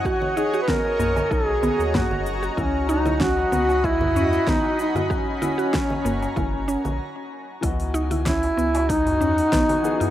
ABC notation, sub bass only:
X:1
M:4/4
L:1/16
Q:1/4=95
K:C#dor
V:1 name="Sub bass" clef=bass
z6 B,,, z B,,,2 z D,, z F,,,2 z | C,,4- C,, z C,,4 E,, z B,,, z3 | z6 F,,, z F,,,2 z A,,, z4 | C,,4- C,, z C,,4 E,, z B,,, z3 |]